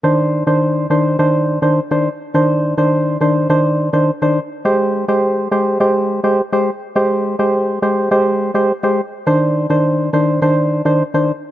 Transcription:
X:1
M:4/4
L:1/16
Q:1/4=104
K:Cm
V:1 name="Synth stab"
[E,Dc]3 [E,Dc]3 [E,Dc]2 [E,Dc]3 [E,Dc] z [E,Dc] z2 | [E,Dc]3 [E,Dc]3 [E,Dc]2 [E,Dc]3 [E,Dc] z [E,Dc] z2 | [A,Gc]3 [A,Gc]3 [A,Gc]2 [A,Gc]3 [A,Gc] z [A,Gc] z2 | [A,Gc]3 [A,Gc]3 [A,Gc]2 [A,Gc]3 [A,Gc] z [A,Gc] z2 |
[E,Dc]3 [E,Dc]3 [E,Dc]2 [E,Dc]3 [E,Dc] z [E,Dc] z2 |]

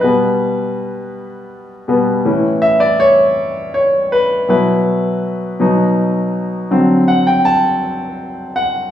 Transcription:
X:1
M:6/8
L:1/16
Q:3/8=54
K:Bphr
V:1 name="Grand piano"
B8 z4 | z2 e d ^c4 c2 B2 | B8 z4 | z2 f g a6 f2 |]
V:2 name="Grand piano" clef=bass
[B,,G,B,]8- [B,,G,B,]2 [B,,G,B,]2 | [A,,E,^C]12 | [B,,F,E]2 z4 [B,,F,^D]6 | [D,F,C]2 z8 z2 |]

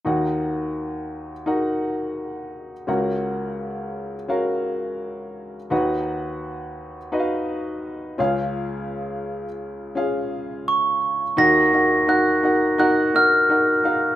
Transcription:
X:1
M:4/4
L:1/16
Q:"Swing 16ths" 1/4=85
K:D#m
V:1 name="Glockenspiel"
z16 | z16 | z16 | z12 c'4 |
a'4 f'4 f'2 e'6 |]
V:2 name="Upright piano"
[DFAf]6- [DFAf] z [DFAf]6- [DFAf] z | [CFAf]6- [CFAf] z [CFAe]6- [CFAe] z | [DFBf]6- [DFBf] z [DFBde]6 [CEGe]2- | [CEGe]4- [CEGe] z3 [CEGe]6- [CEGe] z |
[DFAf]2 [DFAf]2 [DFAf]2 [DFAf]2 [DFAf]2 [DFAf]2 [DFAf]2 [DFAe]2 |]
V:3 name="Upright piano" clef=bass
[D,,D,]16 | [C,,C,]16 | [D,,D,]12- [D,,D,]2 [C,,C,]2- | [C,,C,]12- [C,,C,]2 z2 |
[D,,D,]16 |]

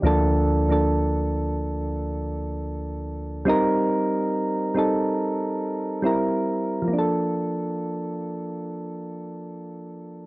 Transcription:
X:1
M:4/4
L:1/16
Q:"Swing 16ths" 1/4=70
K:Bb
V:1 name="Synth keys"
[D,,F,B,DA]3 [D,,F,B,DA]6- [D,,F,B,DA] z6 | [G,CEB]4- [G,CEB] z [G,CEA]6 [G,C=EB]3 z | [F,B,DA]16 |]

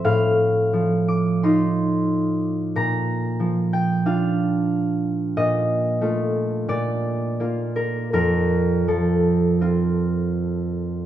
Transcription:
X:1
M:4/4
L:1/8
Q:1/4=89
K:Fmix
V:1 name="Harp"
[c=ef]3 d' c'4 | b3 g f4 | e4 d3 B | B2 A6 |]
V:2 name="Harp"
[A,,F,CA]2 F,2 [EF]4 | B,,2 F,2 [DF]4 | B,,2 [A,F]2 B,,2 [B,F]2 | F,,2 F,2 [CF]4 |]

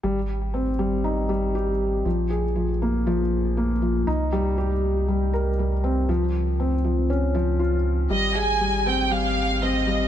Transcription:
X:1
M:4/4
L:1/8
Q:1/4=119
K:Ab
V:1 name="Violin section"
z8 | z8 | z8 | z8 |
e a2 g f2 e2 |]
V:2 name="Felt piano" clef=bass
G, z C G, E G, G z | F, A F, B, F, z B, F, | E G, G z G, B G, C | F, z C F, D F, F z |
G, A G, C G, z C G, |]
V:3 name="Analog synth bass" clef=bass
A,,,8 | B,,,8 | C,,8 | D,,8 |
A,,,8 |]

